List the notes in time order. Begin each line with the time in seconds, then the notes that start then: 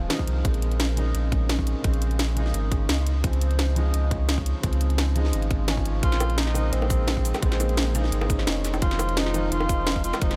Already playing: D#3 F3 G#3 C4 D#4 F4
0.09 D#3 F3 G#3 D#4, snare, closed hi-hat
0.18 D#3 F3 G#3 D#4, kick
0.27 C2, closed hi-hat
0.42 A#1 C#3 G#3 A#3, kick, closed hi-hat
0.47 C4
0.54 closed hi-hat
0.62 closed hi-hat
0.71 closed hi-hat
0.80 snare, closed hi-hat
0.96 C#3 G#3 A#3 D#4, closed hi-hat
1.15 A#1, closed hi-hat
1.29 C#3 G#3 A#3, kick, closed hi-hat
1.35 C#4
1.49 snare, closed hi-hat
1.59 kick
1.67 closed hi-hat
1.81 A#1 C#3 G#3 A#3, kick, closed hi-hat
1.87 C4
1.94 closed hi-hat
2.02 closed hi-hat
2.11 closed hi-hat
2.19 snare, closed hi-hat
2.35 C#3 G#3 A#3 D#4, closed hi-hat
2.46 snare
2.54 G#1, closed hi-hat
2.70 C#3 G#3 A#3 C#4, kick, closed hi-hat
2.89 C#2, snare, closed hi-hat
3.07 closed hi-hat
3.21 C#2 C#3 F3 G#3, kick, closed hi-hat
3.26 C4
3.33 closed hi-hat
3.41 closed hi-hat
3.51 closed hi-hat
3.59 snare, closed hi-hat
3.75 C#3 F3 G#3 D#4, closed hi-hat
3.94 C#2, closed hi-hat
4.08 C#3 F3 G#3, kick, closed hi-hat
4.14 C#4
4.29 snare, closed hi-hat
4.38 kick
4.46 closed hi-hat
4.61 C#2 C#3 F3 G#3, kick, closed hi-hat
4.66 C4
4.73 closed hi-hat
4.81 closed hi-hat
4.90 closed hi-hat
4.98 snare, closed hi-hat
5.14 C#3 F3 G#3 D#4, closed hi-hat
5.25 snare
5.33 G#1, closed hi-hat
5.42 closed hi-hat
5.51 G#1, kick, closed hi-hat
5.67 C#3 F3 G#3 C#4, snare, closed hi-hat
5.76 C#3 F3 G#3 C#4, kick
5.85 closed hi-hat
6.00 A#1 C#3 G#3 A#3 F4 G#4 C5, kick, closed hi-hat
6.06 C4
6.12 snare, closed hi-hat
6.20 closed hi-hat, high bongo, shaker
6.30 closed hi-hat
6.38 D#4, snare, closed hi-hat
6.47 snare
6.54 C#3 G#3 A#3 D#4, closed hi-hat, high bongo, shaker
6.73 A#1 C4, closed hi-hat
6.82 high bongo
6.87 C#3 G#3 A#3, kick, closed hi-hat, shaker
6.93 C4
7.07 snare, closed hi-hat, high bongo
7.17 kick
7.25 closed hi-hat, shaker
7.34 snare, high bongo, shaker
7.40 A#1 C#3 G#3 A#3 C4, kick, closed hi-hat
7.45 C4
7.52 snare, closed hi-hat
7.60 closed hi-hat, high bongo, shaker
7.69 closed hi-hat
7.77 snare, closed hi-hat
7.94 C#3 G#3 A#3 D#4, closed hi-hat, high bongo, shaker
8.04 snare
8.12 G#1, closed hi-hat
8.21 high bongo
8.27 C#3 G#3 A#3, kick, closed hi-hat, shaker
8.33 C#4
8.39 snare
8.47 F1, snare, closed hi-hat, high bongo
8.65 snare, closed hi-hat, shaker
8.74 high bongo, shaker
8.79 F1 D#3 F3 G#3 D#4 F4, kick, closed hi-hat
8.85 C4
8.91 snare, closed hi-hat
8.99 closed hi-hat, high bongo, shaker
9.09 closed hi-hat
9.17 D#4, snare, closed hi-hat
9.26 snare
9.33 D#3 F3 G#3 F4, closed hi-hat, high bongo, shaker
9.52 F1 F4, closed hi-hat
9.60 high bongo
9.66 D#3 F3 G#3, kick, closed hi-hat, shaker
9.72 D#4
9.87 snare, closed hi-hat, high bongo
9.96 kick
10.04 F4, closed hi-hat, shaker
10.13 snare, high bongo, shaker
10.19 F1 D#3 F3 G#3 D#4, kick, closed hi-hat
10.24 C4
10.31 snare, closed hi-hat